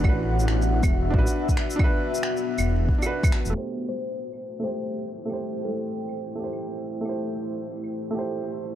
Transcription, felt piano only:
X:1
M:4/4
L:1/16
Q:"Swing 16ths" 1/4=137
K:Ador
V:1 name="Felt piano"
[DFB]8- [DFB]2 [DFB]6 | [DFB]8- [DFB]2 z [DFB]4- [DFB] | [A,Gc]8- [A,Gc]2 [A,Gc]6 | [A,Gc]8- [A,Gc]2 [A,Gc]6 |
[A,Gc]8- [A,Gc]2 [A,Gc]6 |]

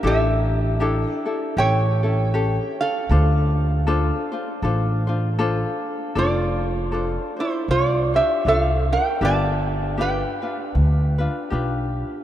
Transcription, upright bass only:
X:1
M:4/4
L:1/8
Q:"Swing" 1/4=78
K:Dm
V:1 name="Upright bass" clef=bass
A,,,4 A,,,4 | D,,4 A,,,4 | [K:F] F,,,4 C,,2 C,,2 | G,,,4 D,,2 =B,,,2 |]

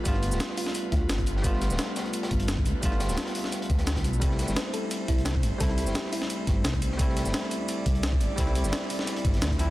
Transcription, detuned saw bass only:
X:1
M:4/4
L:1/16
Q:1/4=173
K:C
V:1 name="Detuned saw bass" clef=bass
G,,,3 D,,, z6 D,,2 G,,,4 | G,,,3 D,,, z6 G,,,4 D,, z | G,,,3 D,,, z6 D,,4 B,,,2 | C,,3 G,,, z6 C,,4 G,,, z |
C,,3 G,,, z6 G,,,2 C,,4 | C,,3 G,,, z6 C,,4 G,,, z | C,,3 G,,, z6 G,,,2 D,,4 |]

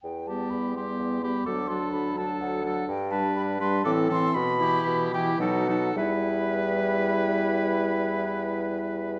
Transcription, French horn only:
X:1
M:3/4
L:1/8
Q:1/4=120
K:Em
V:1 name="French horn" clef=bass
z G,2 G,2 G, | F, F,2 F,2 F, | z G,2 G, E, E, | z E,2 E, F, F, |
G,6- | G,6 |]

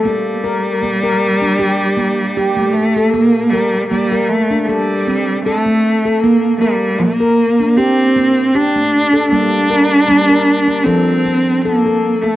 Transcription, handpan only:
X:1
M:4/4
L:1/16
Q:"Swing 16ths" 1/4=78
K:Gm
V:1 name="Handpan"
B,2 B2 B, B2 D G2 B,2 G A,2 A | B,2 B2 B, B2 D A2 C2 A A,2 A | B,2 B2 B, B2 D G2 B,2 G A,2 A | B,2 B2 B, B2 D A2 C2 A A2 A |]
V:2 name="Handpan" clef=bass
z16 | z16 | z16 | G,4 G,4 F,8 |]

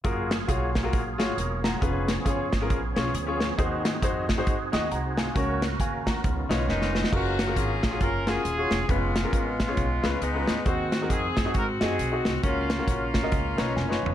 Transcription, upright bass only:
X:1
M:4/4
L:1/8
Q:"Swing" 1/4=136
K:F#
V:1 name="Upright bass" clef=bass
F,,,2 B,,,2 A,,, G,,, =E,,,2 | E,,,2 F,,, G,,, A,,, B,,, =D,,2 | D,,2 E,,2 F,, D,, ^B,,,2 | C,,2 D,,2 C,, B,,, E,,,2 |
F,,,2 G,,, A,,, F,,,2 D,,, =E,,, | E,,,2 G,,, A,,, B,,, C,, C,, =D,, | D,,2 E,, F,, G,, F,, B,,, ^B,,, | C,,2 A,,,2 C,, B,,, F,,, =G,,, |]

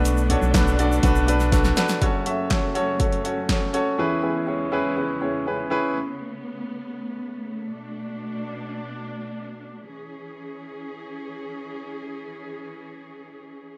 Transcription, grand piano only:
X:1
M:4/4
L:1/8
Q:1/4=122
K:Emix
V:1 name="Grand piano"
[DFAB] [DFAc] [DFAB] [DFAd] [DFAB] [DFAB] [DFAB] [DFAB] | [CFAc] [CFAe] [CFAc] [CFAc] [CFAc] [CFAc] [CFAc] [CFAc] | [CEGB] [CEGB] [CEGc] [CEGB] [CEGB] [CEGc] [CEGB] [CEGB] | z8 |
z8 | z8 | z8 |]
V:2 name="Grand piano" clef=bass
B,,2 z6 | [F,,,F,,]8 | [E,,E,]8 | z8 |
z8 | z8 | z8 |]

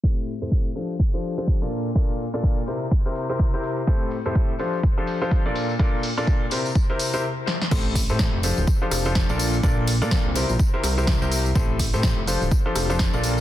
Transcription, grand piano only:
X:1
M:4/4
L:1/16
Q:"Swing 16ths" 1/4=125
K:F
V:1 name="Grand piano"
[A,,CEGAc]2 z [A,,CEGAc]2 z [F,DFGAc] z2 [F,DFGAc]2 [F,DFGAc]2 [B,,DFABd]2 z | [B,,DFABd]2 z [B,,DFABd]2 z [C,CEGBc] z2 [C,CEGBc]2 [C,CEGBc]2 [C,CEGBc]2 z | [A,,CEGAc]2 z [A,,CEGAc]2 z [F,DFGAc] z2 [F,DFGAc]2 [F,DFGAc]2 [B,,DFABd]2 z | [B,,DFABd]2 z [B,,DFABd]2 z [C,CEGBc] z2 [C,CEGBc]2 [C,CEGBc] z4 |
[A,,CEGAc]2 z [A,,CEGAc]2 z [F,DFGAc] z2 [F,DFGAc]2 [F,DFGAc]2 [B,,DFABd]2 z | [B,,DFABd]2 z [B,,DFABd]2 z [C,CEGBc] z2 [C,CEGBc]2 [C,CEGBc]2 [C,CEGBc]2 z | [A,,CEGAc]2 z [A,,CEGAc]2 z [F,DFGAc] z2 [F,DFGAc]2 [F,DFGAc]2 [B,,DFABd]2 z |]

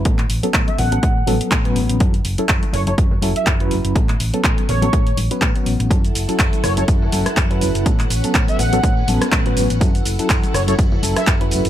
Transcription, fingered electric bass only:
X:1
M:4/4
L:1/16
Q:"Swing 16ths" 1/4=123
K:F#m
V:1 name="Fingered electric bass" clef=bass
A,, z A,,, z A,, z A,,, z A,, z A,,, z A,,2 A,,, A,,, | F,, z F,,, z F,, z F,,, z F,, z F,,, z F,,2 F,,, F,,, | A,, z A,,, z A,, z A,,, z A,, z A,,, z A,, z A,,, A,,, | F,, z F,,, z F,, z F,,, z F,, z F,,, z F,,2 F,,, F,,, |
A,, z A,,, z A,, z A,,, z A,, z A,,, z A,,2 A,,, A,,, | z2 F,,, z F,, z F,,, z F,, z F,,, z F,,2 F,,, F,,, |]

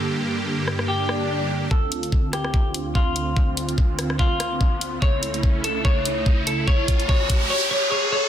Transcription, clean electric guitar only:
X:1
M:4/4
L:1/8
Q:"Swing 16ths" 1/4=145
K:Dm
V:1 name="Clean electric guitar"
A z3 G4 | A3 G3 F2- | F z3 F4 | ^c3 A c3 A |
^c2 c2 c c c c |]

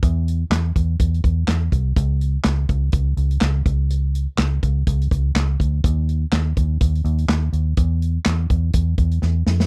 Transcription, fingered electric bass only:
X:1
M:4/4
L:1/8
Q:"Swing 16ths" 1/4=124
K:C#dor
V:1 name="Fingered electric bass" clef=bass
E,,2 E,, E,, E,, E,, E,, =C,, | C,,2 C,, C,, C,, C,, C,, C,,- | C,,2 C,, C,, C,, C,, C,, =D,, | D,,2 D,, D,, D,, D,, D,, D,, |
E,,2 E,, E,, E,, E,, E,, ^E,, |]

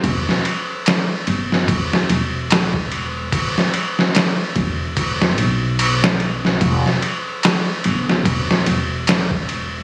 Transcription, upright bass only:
X:1
M:4/4
L:1/8
Q:"Swing 16ths" 1/4=73
K:Em
V:1 name="Upright bass" clef=bass
E,,, z2 G,,, E,,, E,,,3 | z3 E,,,2 B,,,3 | E,,, z2 G,,, E,,, E,,,3 |]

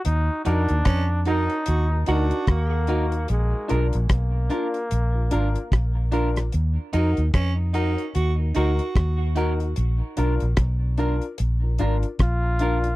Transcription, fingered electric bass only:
X:1
M:4/4
L:1/16
Q:"Swing 16ths" 1/4=74
K:Ebm
V:1 name="Fingered electric bass" clef=bass
E,, z F,, E,, F,,3 z E,,2 =D,, z E,,4 | B,,, z C,, B,,, C,,2 z2 B,,,2 A,,, z B,,,4 | E,, z F,, E,, F,,3 z E,,2 =D,, z E,,4 | B,,, z C,, B,,, C,,3 z B,,,2 A,,, z B,,,4 |]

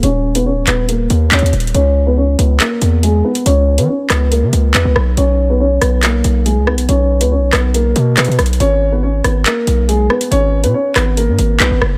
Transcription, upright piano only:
X:1
M:4/4
L:1/16
Q:1/4=140
K:G#m
V:1 name="Upright piano"
[Cc]3 [B,B] [Cc]2 [B,B]2 [A,A]4 [Cc]2 z2 | [Cc]3 [B,B] [Cc]2 [B,B]2 [A,A]4 [G,G]2 [B,B]2 | [Cc]3 [B,B] [Cc]2 [B,B]2 [A,A]4 [B,B]2 z2 | [Cc]3 [B,B] [Cc]2 [B,B]2 [A,A]4 [G,G]2 [B,B]2 |
[Cc]3 [B,B] [Cc]2 [B,B]2 [A,A]4 [B,B]2 z2 | [Cc]3 [B,B] [Cc]2 [B,B]2 [A,A]4 [G,G]2 [B,B]2 | [Cc]3 [B,B] [Cc]2 [B,B]2 [A,A]4 [B,B]2 z2 |]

